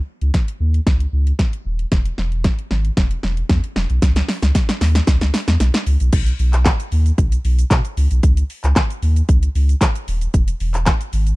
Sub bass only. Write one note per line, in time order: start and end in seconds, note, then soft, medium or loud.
0.22 0.31 C#2 loud
0.60 0.80 D#2 medium
0.87 1.06 C#2 medium
1.13 1.32 C#2 medium
1.65 1.85 D#1 medium
1.92 2.11 E1 loud
2.18 2.48 E1 loud
2.71 2.91 G#1 medium
2.97 3.17 E1 loud
3.23 3.43 E1 medium
3.49 3.60 E2 loud
3.76 3.86 E1 medium
3.90 3.99 B1 medium
4.02 4.22 C#2 loud
4.42 4.52 C#2 loud
4.81 5.01 D#2 loud
5.07 5.18 C#2 loud
5.21 5.31 C#2 medium
5.48 5.57 E2 loud
5.60 5.71 B1 loud
5.87 5.97 C#2 loud
6.01 6.10 B1 medium
6.13 6.33 B1 loud
6.39 6.69 B1 medium
6.92 7.12 D#2 loud
7.18 7.38 B1 loud
7.44 7.64 B1 loud
7.71 7.81 B2 loud
7.97 8.08 C#2 loud
8.11 8.20 B1 loud
8.23 8.43 C#2 loud
8.64 8.73 C#2 loud
9.02 9.22 D#2 medium
9.29 9.48 C#2 medium
9.55 9.75 C#2 medium
10.08 10.27 D#1 loud
10.34 10.54 E1 loud
10.60 10.91 E1 loud
11.13 11.33 G#1 loud